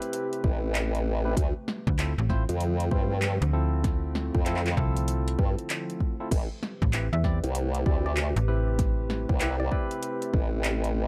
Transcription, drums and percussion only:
0.02 closed hi-hat medium
0.13 closed hi-hat medium
0.33 closed hi-hat soft
0.44 kick loud
0.75 clap loud
0.75 closed hi-hat medium
0.95 closed hi-hat soft
1.37 kick loud
1.37 closed hi-hat medium
1.68 snare medium
1.87 kick loud
1.99 clap loud
1.99 closed hi-hat medium
2.29 kick medium
2.29 snare soft
2.49 closed hi-hat medium
2.61 closed hi-hat medium
2.80 closed hi-hat soft
2.91 kick loud
3.22 clap loud
3.22 closed hi-hat medium
3.42 closed hi-hat soft
3.84 kick loud
3.84 snare soft
3.84 closed hi-hat medium
4.15 snare medium
4.35 kick loud
4.46 clap medium
4.46 closed hi-hat medium
4.56 clap medium
4.66 clap medium
4.66 closed hi-hat soft
4.77 kick medium
4.97 closed hi-hat medium
5.08 closed hi-hat medium
5.28 closed hi-hat medium
5.39 kick loud
5.59 closed hi-hat soft
5.70 clap loud
5.70 closed hi-hat medium
5.90 closed hi-hat soft
6.00 kick medium
6.31 kick loud
6.31 closed hi-hat medium
6.31 crash medium
6.63 snare medium
6.82 kick loud
6.93 clap loud
6.93 closed hi-hat medium
7.24 kick medium
7.24 snare soft
7.44 closed hi-hat medium
7.55 closed hi-hat medium
7.75 closed hi-hat medium
7.86 kick loud
8.17 clap loud
8.17 closed hi-hat medium
8.36 closed hi-hat soft
8.79 kick loud
8.79 snare soft
8.79 closed hi-hat medium
9.10 snare medium
9.29 kick loud
9.41 clap loud
9.41 closed hi-hat medium
9.72 kick medium
9.91 closed hi-hat medium
10.03 closed hi-hat medium
10.22 closed hi-hat medium
10.34 kick loud
10.64 clap loud
10.64 closed hi-hat medium
10.84 closed hi-hat soft

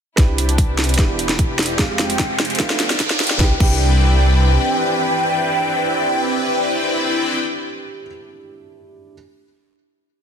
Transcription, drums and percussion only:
0.18 kick loud
0.18 snare soft
0.18 closed hi-hat medium
0.38 closed hi-hat medium
0.49 closed hi-hat medium
0.58 kick loud
0.58 closed hi-hat medium
0.79 snare medium
0.79 closed hi-hat medium
0.84 closed hi-hat medium
0.89 closed hi-hat soft
0.94 closed hi-hat medium
0.99 kick medium
0.99 snare medium
0.99 closed hi-hat medium
1.19 closed hi-hat medium
1.29 snare medium
1.29 closed hi-hat medium
1.39 kick loud
1.39 closed hi-hat medium
1.59 snare medium
1.59 closed hi-hat medium
1.63 closed hi-hat medium
1.66 closed hi-hat medium
1.79 kick loud
1.79 snare medium
1.79 closed hi-hat medium
1.99 snare medium
1.99 closed hi-hat medium
2.10 closed hi-hat medium
2.19 kick loud
2.19 snare medium
2.19 closed hi-hat medium
2.40 snare medium
2.40 closed hi-hat soft
2.45 closed hi-hat medium
2.50 closed hi-hat soft
2.55 closed hi-hat medium
2.60 kick medium
2.60 snare medium
2.60 closed hi-hat medium
2.70 snare medium
2.80 snare medium
2.80 closed hi-hat medium
2.90 snare medium
2.90 closed hi-hat medium
3.00 kick medium
3.00 snare loud
3.00 closed hi-hat medium
3.10 snare medium
3.20 snare loud
3.20 closed hi-hat soft
3.24 closed hi-hat medium
3.27 snare loud
3.27 closed hi-hat medium
3.40 kick loud
3.40 snare medium
3.60 kick loud
3.60 crash medium

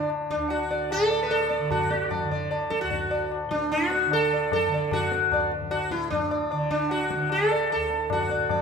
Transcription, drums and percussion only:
0.10 tabla na medium
0.30 tabla ke medium
0.50 tabla na medium
0.71 tabla te medium
0.91 tabla na medium
1.11 tabla na medium
1.31 tabla na medium
1.51 tabla te medium
1.71 tabla na medium
1.71 tabla ge medium
1.91 tabla te medium
2.11 tabla na medium
2.11 tabla ge medium
2.31 tabla ge soft
2.51 tabla na medium
2.71 tabla ke medium
2.91 tabla tin medium
2.91 tabla ge medium
3.11 tabla na soft
3.32 tabla na medium
3.51 tabla ke medium
3.71 tabla na medium
3.91 tabla te medium
4.11 tabla na medium
4.32 tabla na medium
4.52 tabla na medium
4.52 tabla ge medium
4.72 tabla te medium
4.91 tabla na medium
4.91 tabla ge medium
5.12 tabla te medium
5.32 tabla na medium
5.32 tabla ge medium
5.51 tabla te medium
5.62 tabla ge soft
5.71 tabla na medium
5.91 tabla ke medium
6.12 tabla tin medium
6.12 tabla ge medium
6.31 tabla na medium
6.51 tabla na medium
6.71 tabla ke medium
6.91 tabla na medium
7.11 tabla ke medium
7.20 tabla te medium
7.29 tabla na medium
7.50 tabla na medium
7.70 tabla na medium
7.90 tabla te medium
8.10 tabla na medium
8.10 tabla ge medium
8.29 tabla te medium
8.49 tabla na medium
8.49 tabla ge medium

